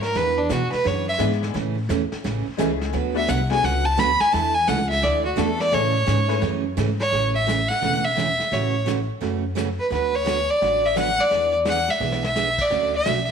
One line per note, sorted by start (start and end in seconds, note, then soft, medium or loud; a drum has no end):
0.00 0.14 G#2 medium
0.00 0.18 A#4 medium
0.00 snare soft
0.15 0.49 E2 medium
0.15 0.36 E3 medium
0.15 0.37 B3 medium
0.15 0.37 D4 medium
0.15 0.37 G#4 medium
0.15 0.39 B4 medium
0.15 brush sweep soft
0.15 snare soft
0.38 0.53 D4 medium
0.49 0.71 B2 medium
0.49 0.61 E3 medium
0.49 0.61 B3 medium
0.49 0.62 D4 medium
0.49 0.72 F#4 medium
0.49 0.62 G#4 medium
0.49 snare medium
0.49 hi-hat pedal medium
0.72 0.89 B4 medium
0.72 muted upright bass stroke soft
0.72 snare soft
0.84 1.19 F#2 medium
0.84 1.06 E3 medium
0.84 1.06 B3 medium
0.84 1.06 D4 medium
0.84 1.06 G#4 medium
0.84 1.08 C#5 medium
0.84 brush sweep medium
0.84 snare soft
1.09 1.16 E5 medium
1.18 1.53 G#2 medium
1.18 1.31 E3 medium
1.18 1.54 G#3 medium
1.18 1.54 B3 medium
1.18 1.31 B3 medium
1.18 1.54 D4 medium
1.18 1.31 D4 medium
1.18 1.54 E4 medium
1.18 1.54 G#4 medium
1.18 1.31 G#4 medium
1.18 snare medium
1.18 hi-hat pedal medium
1.32 snare soft
1.43 snare soft
1.54 1.88 A2 medium
1.54 1.76 C#3 medium
1.54 1.76 E3 medium
1.54 1.76 A3 medium
1.54 1.76 C#4 medium
1.54 1.76 G#4 medium
1.54 brush sweep medium
1.54 snare soft
1.89 2.10 E2 loud
1.89 2.01 C#3 medium
1.89 2.01 E3 medium
1.89 2.01 A3 medium
1.89 2.01 C#4 medium
1.89 2.01 G#4 medium
1.89 snare medium
1.89 hi-hat pedal medium
2.12 muted upright bass stroke soft
2.12 snare soft
2.24 2.45 A1 medium
2.24 2.46 C#3 medium
2.24 2.46 E3 medium
2.24 2.46 A3 medium
2.24 2.46 C#4 medium
2.24 2.46 G#4 medium
2.24 brush sweep medium
2.24 snare medium
2.47 muted upright bass stroke soft
2.57 2.92 C#2 medium
2.57 2.70 C#3 medium
2.57 2.70 E3 medium
2.57 2.93 G#3 medium
2.57 2.93 A3 medium
2.57 2.70 A3 medium
2.57 2.93 C#4 medium
2.57 2.70 C#4 medium
2.57 2.94 E4 medium
2.57 2.70 G#4 loud
2.57 2.94 G#4 medium
2.57 snare medium
2.57 hi-hat pedal medium
2.81 snare soft
2.93 3.27 D2 medium
2.93 3.15 D3 medium
2.93 3.15 F#3 medium
2.93 3.15 B3 medium
2.93 3.15 F#4 medium
2.93 3.15 B4 medium
2.93 brush sweep medium
2.93 snare soft
3.14 3.27 A3 medium
3.14 3.27 B3 medium
3.14 3.27 D4 medium
3.14 3.27 F#4 medium
3.14 3.27 A4 medium
3.14 3.31 E5 medium
3.28 3.62 C2 loud
3.28 3.39 D3 medium
3.28 3.40 F#3 medium
3.28 3.40 B3 medium
3.28 3.40 F#4 medium
3.28 3.40 B4 medium
3.28 3.51 F#5 medium
3.28 snare medium
3.28 hi-hat pedal medium
3.50 3.62 A3 medium
3.50 3.62 B3 medium
3.50 3.62 D4 medium
3.50 3.62 F#4 medium
3.50 3.63 G#4 medium
3.50 3.66 G#5 loud
3.50 snare soft
3.63 3.97 C#2 medium
3.63 3.85 D3 medium
3.63 3.85 F#3 medium
3.63 3.85 B3 medium
3.63 3.85 F#4 medium
3.63 3.85 B4 medium
3.63 3.87 F#5 medium
3.63 brush sweep medium
3.63 snare soft
3.85 4.01 A5 medium
3.97 4.19 D2 medium
3.97 4.09 D3 medium
3.97 4.09 F#3 medium
3.97 4.09 B3 medium
3.97 4.09 F#4 medium
3.97 4.10 B4 loud
3.97 4.22 B5 loud
3.97 snare medium
3.97 hi-hat pedal medium
4.20 4.34 G#5 loud
4.20 muted upright bass stroke soft
4.20 snare soft
4.32 4.67 E2 medium
4.32 4.54 E3 medium
4.32 4.54 A3 medium
4.32 4.54 D4 medium
4.32 4.55 E4 medium
4.32 4.55 A4 medium
4.32 4.56 A5 loud
4.32 brush sweep medium
4.32 snare soft
4.55 4.70 G#5 medium
4.67 5.02 C#2 loud
4.67 4.79 E3 medium
4.67 4.79 A3 medium
4.67 4.79 D4 medium
4.67 4.79 E4 medium
4.67 4.79 A4 medium
4.67 4.89 F#5 medium
4.67 snare medium
4.67 hi-hat pedal medium
4.90 5.05 E5 loud
4.90 snare soft
5.02 5.36 D2 medium
5.02 5.24 E3 medium
5.02 5.24 A3 medium
5.02 5.24 D4 medium
5.02 5.24 E4 medium
5.02 5.24 A4 medium
5.02 5.25 D5 medium
5.02 brush sweep soft
5.02 snare medium
5.25 5.41 F#4 medium
5.36 5.71 E2 medium
5.36 5.48 E3 medium
5.36 5.48 A3 medium
5.36 5.70 A3 medium
5.36 5.72 B3 medium
5.36 5.49 D4 loud
5.36 5.72 D4 medium
5.36 5.49 E4 medium
5.36 5.71 E4 medium
5.36 5.49 A4 medium
5.36 5.71 A4 medium
5.36 5.63 A4 medium
5.36 snare medium
5.36 hi-hat pedal soft
5.60 5.76 D5 loud
5.60 snare soft
5.71 6.07 A2 medium
5.71 5.93 C#3 medium
5.71 5.94 E3 medium
5.71 5.92 A3 medium
5.71 5.94 A3 medium
5.71 5.92 C#4 medium
5.71 5.94 C#4 medium
5.71 5.92 E4 medium
5.71 5.94 G#4 medium
5.71 5.92 G#4 medium
5.71 5.93 A4 medium
5.71 6.43 C#5 medium
5.71 brush sweep soft
5.71 snare soft
6.06 6.41 G#2 loud
6.06 6.18 C#3 medium
6.06 6.18 E3 medium
6.06 6.18 A3 medium
6.06 6.18 C#4 medium
6.06 6.19 G#4 medium
6.06 snare medium
6.06 hi-hat pedal medium
6.28 6.40 A3 medium
6.28 6.40 C#4 medium
6.28 6.40 E4 medium
6.28 6.41 G#4 medium
6.28 6.41 B4 medium
6.28 snare soft
6.42 6.76 F#2 medium
6.42 6.63 C#3 medium
6.42 6.63 E3 medium
6.42 6.63 A3 medium
6.42 6.63 C#4 medium
6.42 6.64 G#4 medium
6.42 brush sweep medium
6.42 snare medium
6.77 7.11 G#2 medium
6.77 6.88 C#3 medium
6.77 6.88 E3 medium
6.77 6.89 A3 medium
6.77 6.89 C#4 loud
6.77 6.89 G#4 medium
6.77 snare medium
6.77 hi-hat pedal medium
7.00 7.32 C#5 loud
7.00 snare soft
7.11 7.68 A1 medium
7.11 7.33 C#3 medium
7.11 7.33 E3 medium
7.11 7.34 A3 medium
7.11 7.34 C#4 medium
7.11 7.34 G#4 medium
7.11 brush sweep soft
7.11 snare soft
7.35 7.70 E5 medium
7.47 7.58 C#3 medium
7.47 7.58 E3 medium
7.47 7.58 A3 medium
7.47 7.58 C#4 medium
7.47 7.59 G#4 medium
7.47 snare medium
7.47 hi-hat pedal medium
7.69 8.06 F#5 loud
7.69 snare soft
7.82 8.38 E1 medium
7.82 8.03 C#3 medium
7.82 8.03 E3 medium
7.82 8.04 A3 medium
7.82 8.03 C#4 medium
7.82 8.04 G#4 medium
7.82 brush sweep soft
7.82 snare soft
8.04 8.55 E5 medium
8.16 8.28 C#3 medium
8.16 8.28 E3 medium
8.16 8.28 A3 medium
8.16 8.28 C#4 medium
8.16 8.28 G#4 medium
8.16 snare medium
8.16 hi-hat pedal medium
8.40 snare soft
8.51 9.08 A1 medium
8.51 8.73 C#3 medium
8.51 8.73 E3 medium
8.51 8.73 A3 medium
8.51 8.73 C#4 medium
8.51 8.74 F#4 medium
8.51 8.87 C#5 medium
8.51 brush sweep soft
8.51 snare soft
8.86 8.98 C#3 medium
8.86 8.98 E3 medium
8.86 8.98 A3 medium
8.86 8.98 C#4 medium
8.86 8.98 F#4 medium
8.86 snare medium
8.86 hi-hat pedal medium
9.21 9.77 F#2 medium
9.21 9.43 C#3 medium
9.21 9.43 E3 medium
9.21 9.43 A3 medium
9.21 9.43 C#4 medium
9.21 9.43 F#4 medium
9.21 brush sweep medium
9.21 snare soft
9.55 9.67 C#3 medium
9.55 9.67 E3 medium
9.55 9.68 A3 medium
9.55 9.68 C#4 medium
9.55 9.68 F#4 medium
9.55 snare medium
9.55 hi-hat pedal medium
9.79 9.91 B4 medium
9.91 10.47 D2 medium
9.91 10.13 D3 medium
9.91 10.13 F#3 medium
9.91 10.13 B3 medium
9.91 10.13 F#4 medium
9.91 10.13 B4 medium
9.91 10.17 B4 medium
9.91 brush sweep soft
9.91 snare soft
10.15 10.51 C#5 loud
10.25 10.37 D3 medium
10.25 10.37 F#3 medium
10.25 10.37 B3 medium
10.25 10.38 F#4 medium
10.25 10.38 B4 medium
10.25 snare medium
10.25 hi-hat pedal medium
10.50 10.87 D5 loud
10.61 11.18 A1 medium
10.61 10.83 D3 medium
10.61 10.83 F#3 medium
10.61 10.83 B3 medium
10.61 10.83 F#4 medium
10.61 10.83 B4 medium
10.61 brush sweep soft
10.61 snare soft
10.86 10.97 E5 medium
10.95 11.07 D3 medium
10.95 11.08 F#3 medium
10.95 11.08 B3 medium
10.95 11.08 F#4 medium
10.95 11.08 B4 medium
10.95 11.22 F#5 loud
10.95 snare medium
10.95 hi-hat pedal medium
11.18 11.54 D5 loud
11.18 snare soft
11.31 11.88 E2 medium
11.31 11.53 E3 medium
11.31 11.53 B3 medium
11.31 11.53 D4 medium
11.31 11.53 G#4 medium
11.31 brush sweep medium
11.31 snare soft
11.65 11.77 E3 medium
11.65 11.77 B3 medium
11.65 11.78 D4 medium
11.65 11.78 G#4 medium
11.65 11.92 F#5 loud
11.65 snare medium
11.65 hi-hat pedal medium
11.88 12.25 E5 medium
11.88 snare soft
12.00 12.57 B1 medium
12.00 12.23 E3 medium
12.00 12.22 B3 medium
12.00 12.23 D4 medium
12.00 12.23 G#4 medium
12.00 snare soft
12.12 snare medium
12.24 12.63 E5 loud
12.24 snare medium
12.36 12.47 E3 medium
12.36 12.48 B3 medium
12.36 12.48 D4 medium
12.36 12.48 G#4 medium
12.36 snare medium
12.36 hi-hat pedal medium
12.58 12.95 D5 medium
12.58 kick medium
12.58 crash medium
12.71 12.99 D2 medium
12.71 12.93 D3 medium
12.71 12.93 F#3 medium
12.71 12.93 A3 medium
12.71 12.93 C#4 medium
12.71 12.93 F#4 medium
12.71 brush sweep soft
12.71 snare soft
12.96 13.27 E5 loud
13.06 13.31 B1 medium
13.06 13.17 D3 medium
13.06 13.18 F#3 medium
13.06 13.18 A3 medium
13.06 13.18 C#4 medium
13.06 13.18 F#4 medium
13.06 snare medium
13.06 hi-hat pedal medium
13.28 snare soft